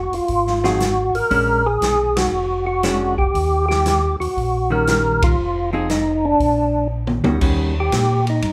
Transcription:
Already playing: F#4
0.12 F1 F4, open hi-hat
0.28 G#1, kick, open hi-hat
0.47 snare
0.64 F3 C4 D#4 F#4 G#4, snare
0.80 snare, closed hi-hat
1.14 G#1 A#4, open hi-hat
1.31 A#1 G#3 C#4 D4, kick, open hi-hat
1.66 G#4
1.81 B1, snare, closed hi-hat
2.16 F#4, snare, ride
2.32 F1
2.67 F#4
2.83 G#3 C#4 D4, snare, closed hi-hat
3.18 G4, kick
3.34 D#2, kick, open hi-hat
3.69 G4, snare
3.86 snare, closed hi-hat
4.20 D#2 F#4, open hi-hat
4.37 A#1, kick, open hi-hat
4.70 D#3 G3 C#4 F#4 A#4
4.87 snare, closed hi-hat
5.22 F4, kick, ride
5.37 F1
5.73 F3 C4 D#4 G#4
5.90 D#4, snare, closed hi-hat
6.25 D4
6.39 A#1, kick, open hi-hat
7.07 high tom
7.24 D2 D#3 G3 C#4 F#4, high tom
7.41 D#2 D#3 G3 C#4 F#4, kick, crash
7.80 G4
7.92 A#2, kick, snare, hi-hat pedal, ride
8.27 D#4, ride
8.42 G2, kick, ride

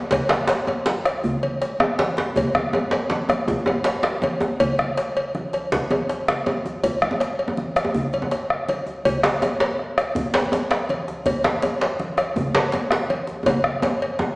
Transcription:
0.11 bombo low, cowbell, djembe slap, low conga, djembe bass
0.29 bombo rim, djembe slap, high conga
0.47 bombo rim, cowbell, djembe slap
0.67 cowbell, djembe tone
0.86 bombo rim, djembe slap, high conga
1.05 bombo rim, cowbell, djembe slap, djembe tone, high conga
1.23 bombo low, djembe bass, low conga
1.43 cowbell, high conga
1.62 cowbell, djembe slap
1.80 bombo rim, djembe tone
1.99 cowbell, djembe slap, high conga
2.17 djembe slap, djembe tone
2.36 bombo low, cowbell, djembe tone, djembe bass, low conga
2.55 bombo rim, djembe slap, djembe tone, high conga
2.73 bombo rim, cowbell, djembe tone
2.91 cowbell, djembe slap
3.10 bombo rim, djembe slap, high conga
3.29 bombo rim, cowbell, djembe slap, djembe tone, high conga
3.48 bombo low, djembe tone, djembe bass, low conga
3.66 cowbell, djembe tone, high conga
3.84 cowbell, djembe slap
4.03 bombo rim, djembe slap
4.22 cowbell, djembe tone, high conga
4.41 djembe slap, djembe tone
4.60 bombo low, cowbell, djembe slap, djembe bass, low conga
4.79 bombo rim, djembe slap, high conga
4.97 bombo rim, cowbell, djembe slap
5.17 cowbell
5.35 bombo rim, djembe slap, high conga
5.53 cowbell, djembe slap, djembe tone
5.72 bombo rim, bombo low, djembe slap, low conga, djembe bass
5.91 bombo rim, cowbell, high conga, djembe tone
6.09 cowbell, djembe slap
6.28 bombo rim, djembe slap, low conga
6.46 bombo rim, cowbell, djembe tone, high conga
6.65 djembe slap, high conga, djembe tone
6.83 bombo low, cowbell, low conga, djembe bass
7.02 bombo rim, djembe slap, high conga
7.11 djembe tone
7.20 bombo rim, cowbell, djembe slap
7.39 cowbell
7.48 djembe tone
7.57 bombo rim, high conga
7.76 bombo rim, cowbell, djembe slap, high conga, djembe tone
7.85 djembe tone
7.94 bombo low, low conga, djembe bass
8.13 cowbell, high conga
8.22 djembe tone
8.31 cowbell, djembe slap
8.50 bombo rim
8.68 cowbell, high conga
8.87 djembe tone
9.05 bombo low, cowbell, low conga, djembe bass
9.23 bombo rim, djembe slap, high conga
9.42 bombo rim, cowbell, djembe slap, djembe tone
9.60 cowbell, djembe slap
9.79 bombo rim, djembe slap
9.98 bombo rim, cowbell, djembe slap, high conga, djembe tone
10.15 bombo low, djembe bass, low conga
10.34 cowbell, djembe slap, high conga
10.52 cowbell, djembe slap, djembe tone
10.71 bombo rim, djembe slap
10.89 cowbell, high conga
11.08 djembe slap, djembe tone
11.26 bombo low, cowbell, djembe bass, low conga
11.44 bombo rim, djembe slap, high conga
11.62 bombo rim, cowbell, djembe slap, djembe tone
11.81 cowbell, djembe slap
11.99 bombo rim, djembe slap, high conga
12.17 bombo rim, cowbell, djembe slap, djembe tone, high conga
12.36 bombo low, djembe bass, low conga
12.55 cowbell, djembe slap, high conga
12.72 cowbell, djembe slap, djembe tone
12.91 bombo rim, djembe slap
13.10 cowbell, high conga
13.27 djembe slap, djembe tone
13.46 bombo low, cowbell, djembe tone, high conga, djembe bass, low conga
13.64 bombo rim, high conga
13.82 cowbell, djembe slap, djembe tone
14.02 cowbell, high conga
14.19 bombo rim, djembe slap, high conga, djembe tone

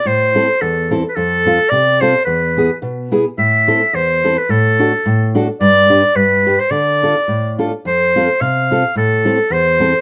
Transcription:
0.05 A2 C5
0.35 C4 E4 A4
0.61 E2 A4
0.91 C4 E4 A4
1.09 B4
1.15 F2 A4
1.46 C4 F4 A4
1.69 C3 D5
2.01 C4 F4 A4 C5
2.25 E2 B4
2.57 B3 E4 G#4
2.82 B2
3.12 B3 E4 G#4
3.38 A2 E5
3.68 C4 E4 A4
3.93 E2 C5
4.24 C4 E4 A4
4.37 B4
4.49 A2 A4
4.79 D4 F#4 A4
5.06 A2
5.35 D4 F#4 A4
5.60 G2 D5
5.90 D4 G4 B4
6.15 G2 B4
6.46 D4 G4 B4
6.59 C5
6.70 D3 D5
7.03 D4 F4 A4
7.28 A2
7.58 D4 F4 A4
7.85 F2 C5
8.16 C4 F4 A4
8.41 C3 F5
8.71 C4 F4 A4
8.96 A2 A4
9.25 C4 E4 A4
9.50 E2 C5
9.80 C4 E4 A4

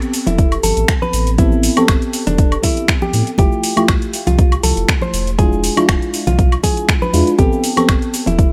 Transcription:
Already playing: B3 C4 G4 A4
0.02 closed hi-hat, cabasa
0.14 open hi-hat, cabasa
0.27 E1 E4, closed hi-hat, high conga, cabasa
0.38 kick, closed hi-hat, cabasa
0.52 closed hi-hat, cabasa, high woodblock
0.63 G1 A4, open hi-hat, high conga, cabasa
0.77 A1, closed hi-hat, cabasa
0.88 finger snap, kick, closed hi-hat, cabasa
1.02 B4, high conga, cabasa
1.13 A1, open hi-hat, cabasa
1.27 closed hi-hat, cabasa
1.38 B3 C4 E4 G4 A4, kick, closed hi-hat, high conga, cabasa
1.52 cabasa
1.63 open hi-hat, cabasa
1.76 B3 C4 G4 A4, closed hi-hat, high conga, cabasa, high woodblock
1.88 G1, finger snap, kick, closed hi-hat, cabasa, high woodblock
2.02 closed hi-hat, cabasa
2.13 open hi-hat, cabasa
2.27 E1 D4, closed hi-hat, high conga, low conga, cabasa
2.38 kick, closed hi-hat, cabasa
2.52 closed hi-hat, cabasa, high woodblock
2.63 E4, kick, open hi-hat, high conga, cabasa
2.77 closed hi-hat, cabasa
2.88 finger snap, kick, closed hi-hat, cabasa
3.02 G4, high conga, cabasa
3.13 A2, open hi-hat, cabasa
3.27 closed hi-hat, cabasa
3.38 F1 A3 E4 F4 G4, kick, closed hi-hat, high conga, cabasa
3.52 cabasa
3.64 open hi-hat, cabasa
3.76 A3 E4 F4 G4, closed hi-hat, high conga, cabasa, high woodblock
3.88 C2, finger snap, kick, closed hi-hat, cabasa, high woodblock
4.02 closed hi-hat, cabasa
4.13 open hi-hat, cabasa
4.27 C2 F4, closed hi-hat, high conga, cabasa
4.39 kick, closed hi-hat, cabasa
4.52 closed hi-hat, cabasa, high woodblock
4.63 C2 A4, open hi-hat, high conga, cabasa
4.77 F1, closed hi-hat, cabasa
4.89 finger snap, kick, closed hi-hat, cabasa
5.02 C5, high conga, cabasa
5.14 E1, open hi-hat, cabasa
5.27 closed hi-hat, cabasa
5.38 G#3 D4 E4 F4 G#4, kick, closed hi-hat, high conga, cabasa
5.53 cabasa
5.64 open hi-hat, cabasa
5.76 G#3 D4 E4 F4, closed hi-hat, high conga, cabasa, high woodblock
5.89 D1, finger snap, kick, closed hi-hat, cabasa, high woodblock
6.02 closed hi-hat, cabasa
6.14 open hi-hat, cabasa
6.27 B1 F4, closed hi-hat, high conga, low conga, cabasa
6.39 kick, closed hi-hat, cabasa
6.52 closed hi-hat, cabasa, high woodblock
6.63 G#4, kick, open hi-hat, high conga, cabasa
6.77 closed hi-hat, cabasa
6.89 finger snap, kick, closed hi-hat, cabasa
7.02 B4, high conga, cabasa
7.13 E2 G#3 D4 E4 F4, open hi-hat, cabasa
7.27 closed hi-hat, cabasa
7.38 A1 B3 C4 G4 A4, kick, closed hi-hat, high conga, cabasa
7.52 cabasa
7.64 open hi-hat, cabasa
7.76 B3 C4 G4 A4, closed hi-hat, high conga, cabasa, high woodblock
7.89 G1, finger snap, kick, closed hi-hat, cabasa, high woodblock
8.02 closed hi-hat, cabasa
8.14 open hi-hat, cabasa
8.27 E1 E4, closed hi-hat, high conga, cabasa
8.39 kick, closed hi-hat, cabasa

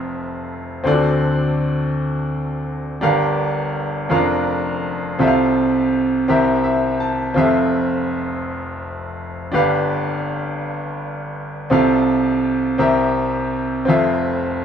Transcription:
Already playing: F1 F2 C4 F4 A4 E5
0.84 D2 D3 C4 F4 A4 D5
0.91 F#4
3.01 G1 G2 D4 G4 A#4 F5
4.09 F1 F2 C#4 F4 A#4 F5
4.15 D4
5.19 C2 C3 C4 F4 A4 E5
5.27 F5
6.28 C2 C3 C4 G4 A#4 E5
6.64 E5
7.00 A5
7.34 F1 F2 C4 F4 G4 E5
7.43 A4
9.52 G1 G2 D4 G4 B4 F5
11.70 C2 C3 C4 F4 A4 F5
12.78 C2 C3 C4 G4 A#4 E5
13.85 F1 F2 C4 F4 A4
13.89 E5

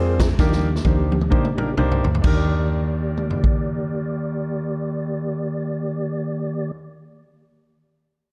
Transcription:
Already playing: F2 G#3 C4 D4 F4 G#4 A#4 C5
0.20 G#4, kick, snare, ride
0.39 D#2 D#3 F3 G3 A#3 D4 D#4 G4 A#4, kick, snare
0.52 snare
0.76 snare
0.84 D2 A#3 D4 D#4 G4 C5, kick, high tom
1.12 high tom
1.21 mid tom
1.30 A#1 A#3 D4 D#4 G4 C5, kick
1.45 mid tom
1.57 A#3 D4 D#4 G4 A#4, mid tom
1.77 C2 A#3 D4 D#4 G4 C5, mid tom
1.91 floor tom
2.04 D2, floor tom
2.15 floor tom
2.22 D#2 D#3 A#3 D4 D#4 G4 D5, kick, crash
2.26 A#4
3.17 mid tom
3.30 floor tom
3.44 kick

